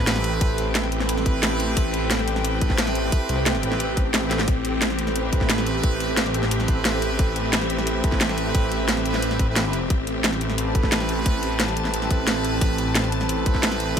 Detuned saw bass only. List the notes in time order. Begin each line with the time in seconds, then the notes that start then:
Already playing: A1
0.41 A1
1.77 A1
2.61 A1
3.29 C2
3.63 A1
4.48 A1
5.33 A1
5.83 A1
6.68 A1
7.19 A1
8.04 A1
8.55 A1
9.06 A1
9.90 A1
10.75 A1
11.26 A1
12.61 A1
13.46 A1